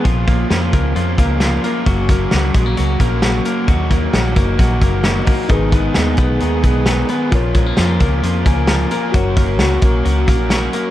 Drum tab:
HH |xxxxxxxx|xxxxxxxx|xxxxxxxo|xxxxxxxx|
SD |--o---o-|--o---o-|--o---o-|--o---o-|
BD |oo-o-o--|oo-o-o--|oo-ooo-o|oo-o-o--|

HH |xxxxxxxx|xxxxxxxx|
SD |--o---o-|--o---o-|
BD |oo-o-o--|oo-o-o--|